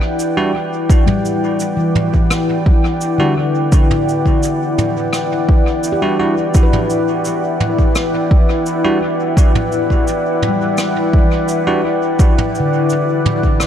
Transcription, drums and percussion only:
0.19 cabasa
0.90 kick, cabasa
1.07 mid tom
1.25 cabasa
1.60 cabasa
1.95 mid tom
2.14 kick
2.30 cross-stick, cabasa
2.66 kick
3.01 cabasa
3.72 kick, cabasa
3.91 mid tom
4.09 cabasa
4.26 kick
4.43 cabasa
4.78 mid tom, cabasa
5.13 cross-stick, cabasa
5.49 kick
5.83 cabasa
6.54 kick, cabasa
6.73 mid tom
6.90 cabasa
7.25 cabasa
7.60 mid tom
7.79 kick
7.95 cross-stick, cabasa
8.31 kick
8.66 cabasa
9.37 kick, cabasa
9.55 mid tom
9.72 cabasa
9.90 kick
10.07 cabasa
10.42 mid tom
10.77 cross-stick, cabasa
11.13 kick
11.48 cabasa
12.19 kick, cabasa
12.38 mid tom
12.55 cabasa
12.90 cabasa
13.26 mid tom
13.43 kick
13.60 cross-stick, cabasa

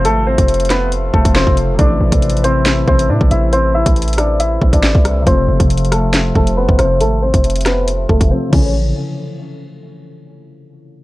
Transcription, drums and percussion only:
0.05 closed hi-hat
0.38 kick, closed hi-hat
0.48 closed hi-hat
0.54 closed hi-hat
0.60 closed hi-hat
0.65 closed hi-hat
0.70 snare, closed hi-hat
0.92 closed hi-hat
1.14 kick
1.25 kick, closed hi-hat
1.35 snare
1.47 kick
1.57 closed hi-hat
1.79 kick, closed hi-hat
2.12 kick, closed hi-hat
2.22 closed hi-hat
2.30 closed hi-hat
2.37 closed hi-hat
2.44 closed hi-hat
2.66 snare, closed hi-hat
2.88 kick
2.99 closed hi-hat
3.21 kick
3.31 closed hi-hat
3.53 closed hi-hat
3.86 kick, closed hi-hat
3.96 closed hi-hat
4.02 closed hi-hat
4.08 closed hi-hat
4.13 closed hi-hat
4.18 cross-stick, closed hi-hat
4.40 closed hi-hat
4.61 kick
4.73 kick, closed hi-hat
4.83 snare
4.95 kick
5.05 cross-stick, closed hi-hat
5.27 kick, closed hi-hat
5.60 kick, closed hi-hat
5.70 closed hi-hat
5.77 closed hi-hat
5.85 closed hi-hat
5.92 cross-stick, closed hi-hat
6.14 snare, closed hi-hat
6.35 kick
6.47 closed hi-hat
6.69 kick
6.79 cross-stick, closed hi-hat
7.01 closed hi-hat
7.34 kick, closed hi-hat
7.44 closed hi-hat
7.50 closed hi-hat
7.56 closed hi-hat
7.61 closed hi-hat
7.66 cross-stick, snare, closed hi-hat
7.88 closed hi-hat
8.09 kick
8.21 kick, closed hi-hat
8.53 kick, crash

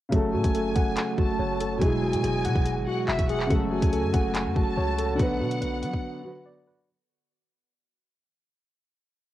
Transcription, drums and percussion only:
0.12 kick, closed hi-hat
0.44 kick, closed hi-hat
0.55 closed hi-hat
0.76 kick, closed hi-hat
0.97 clap, closed hi-hat
1.18 kick
1.60 closed hi-hat
1.81 kick, closed hi-hat
2.13 closed hi-hat
2.24 closed hi-hat
2.45 closed hi-hat
2.55 kick
2.66 closed hi-hat
3.08 clap
3.19 kick, closed hi-hat
3.29 closed hi-hat
3.40 clap
3.51 kick, closed hi-hat
3.82 kick, closed hi-hat
3.93 closed hi-hat
4.14 kick, closed hi-hat
4.35 clap, closed hi-hat
4.56 kick
4.99 closed hi-hat
5.20 kick, closed hi-hat
5.51 closed hi-hat
5.62 closed hi-hat
5.83 closed hi-hat
5.93 kick

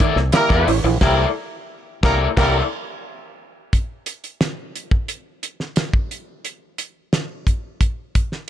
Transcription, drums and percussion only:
0.00 kick, closed hi-hat
0.17 snare
0.32 snare, closed hi-hat
0.50 kick, snare
0.68 open hi-hat
1.01 kick, snare, crash
2.03 kick, snare
2.37 kick, snare, crash
3.73 kick, closed hi-hat
4.06 closed hi-hat
4.24 closed hi-hat
4.41 snare, closed hi-hat
4.76 closed hi-hat
4.91 kick
5.08 closed hi-hat
5.43 closed hi-hat
5.60 snare
5.76 snare, closed hi-hat
5.93 kick
6.11 closed hi-hat
6.45 closed hi-hat
6.78 closed hi-hat
7.13 snare, closed hi-hat
7.47 kick, closed hi-hat
7.81 kick, closed hi-hat
8.15 kick, closed hi-hat
8.32 snare

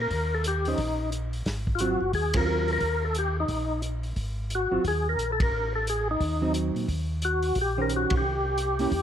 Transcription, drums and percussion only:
0.11 kick, open hi-hat
0.44 closed hi-hat
0.65 open hi-hat
0.78 kick, open hi-hat
1.12 closed hi-hat
1.33 open hi-hat
1.46 kick, snare, open hi-hat
1.67 kick
1.79 closed hi-hat
2.13 kick, open hi-hat
2.34 kick, ride
2.68 open hi-hat
2.81 kick, open hi-hat
3.15 closed hi-hat
3.48 kick, open hi-hat
3.82 closed hi-hat
4.03 open hi-hat
4.16 kick, open hi-hat
4.50 closed hi-hat
4.85 kick, open hi-hat
5.19 closed hi-hat
5.40 kick, ride
5.87 closed hi-hat
6.20 kick, open hi-hat
6.54 closed hi-hat
6.76 open hi-hat
6.88 kick, open hi-hat
7.22 closed hi-hat
7.43 open hi-hat
7.55 kick, open hi-hat
7.89 closed hi-hat
8.10 kick, ride
8.58 closed hi-hat
8.79 open hi-hat
8.92 kick, open hi-hat

